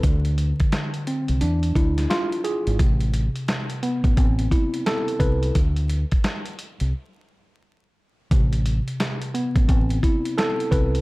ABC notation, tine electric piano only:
X:1
M:4/4
L:1/8
Q:"Swing 16ths" 1/4=87
K:Am
V:1 name="Tine electric piano"
D,3 C D E F ^G | C,3 B, C E A B | z8 | C,3 B, C E A B |]